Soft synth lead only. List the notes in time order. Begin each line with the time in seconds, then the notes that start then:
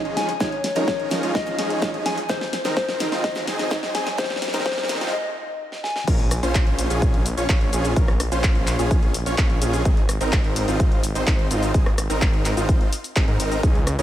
Already playing: D#5
0.17 G#5
0.40 C#5
0.87 C#5
1.35 D#5
2.06 G#5
2.30 C5
2.77 C5
3.24 D#5
3.95 G#5
4.18 C5
4.65 C5
5.13 D#5
5.84 G#5